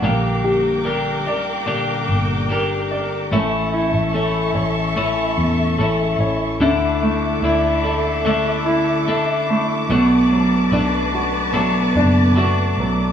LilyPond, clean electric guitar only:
\new Staff \with { instrumentName = "Clean electric guitar" } { \time 4/4 \key d \major \tempo 4 = 73 <bes, d g d' g'>4 <d g d' g'>8 <g d' g'>8 <bes, d g d' g'>4 <d g d' g'>4 | <a, e a cis' e'>4 <e a cis' e'>4 <a, e a cis' e'>4 <e a cis' e'>4 | <d a d' e'>4 <d a d' e'>8 <a d' e'>8 <d a d' e'>4 <d a d' e'>4 | <b, fis a d' fis'>4 <fis a d' fis'>4 <b, fis a d' fis'>4 <fis a d' fis'>4 | }